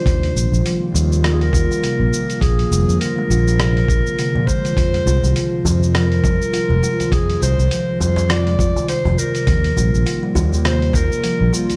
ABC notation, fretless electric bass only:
X:1
M:4/4
L:1/16
Q:"Swing 16ths" 1/4=102
K:Fdor
V:1 name="Fretless electric bass" clef=bass
E,, z B,,, B,,, z2 E,,4 E,, z2 B,,, z2 | B,,, z F,,, F,, z2 B,,,4 B,,, z2 B,, z2 | F,, z C,, C,, z2 F,,4 F,, z2 F,,, z2 | F,, z C,, C,, z2 F,,4 F,, z2 F,,, z2 |
E,, z B,,, B,,, z2 E,,4 E,, z2 B,,, z2 |]